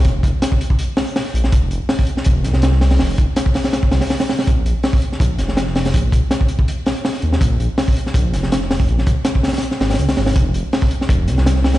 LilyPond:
<<
  \new Staff \with { instrumentName = "Detuned saw bass" } { \clef bass \time 4/4 \key f \phrygian \tempo 4 = 163 f,,8 f,,8 r2 r8 bes,,8 | f,,8 f,,8 r4 f,,8 c,4. | f,,8 f,,8 r4. c,8 r4 | bes,,8 bes,,8 r4 bes,,8 f,,4. |
bes,,8 bes,,8 r2 r8 ees,8 | bes,,8 bes,,8 r4 bes,,8 f,,4. | bes,,8 bes,,8 r4. aes,,8 des,8 aes,,8 | f,,8 f,,8 r4 f,,8 c,4. | }
  \new DrumStaff \with { instrumentName = "Drums" } \drummode { \time 4/4 <hh bd>8 <hh bd>8 <hh sn>16 bd16 hh16 bd16 hh8 <hho sn>16 hh16 <hho sn>16 sn16 hh16 sn16 | <hh bd>8 hh8 <hho sn>16 bd16 hh16 sn16 <hh bd>8 <hh sn>16 sn16 <hh sn>16 sn16 <hho sn>16 <hho sn>16 | <hho sn>8 <hh bd>8 <hh sn>16 bd16 <hho sn>16 <hho sn>16 <hh sn>16 bd16 <hho sn>16 <hho sn>16 <hho sn>16 <hho sn>16 <hho sn>16 <hho sn>16 | <hh bd>8 hh8 <hho sn>16 bd16 hh16 sn16 <hh bd>8 <hh sn>16 sn16 <hh sn>16 sn16 <hho sn>16 <hho sn>16 |
<hh bd>8 <hh bd>8 <hh sn>16 bd16 hh16 bd16 hh8 <hho sn>16 hh16 <hho sn>16 sn16 hh16 sn16 | <hh bd>8 hh8 <hho sn>16 bd16 hh16 sn16 <hh bd>8 <hh sn>16 sn16 <hh sn>16 sn16 <hho sn>16 bd16 | hh16 sn16 <hh bd>8 <hh sn>16 bd16 <hho sn>32 <hho sn>32 <hho sn>32 <hho sn>32 hh16 sn16 <hho sn>16 <hho sn>32 <hho sn>32 hh16 <hho sn>16 <hho sn>16 <hho sn>16 | <hh bd>8 hh8 <hho sn>16 bd16 hh16 sn16 <hh bd>8 <hh sn>16 sn16 <hh sn>16 sn16 <hho sn>16 <hho sn>16 | }
>>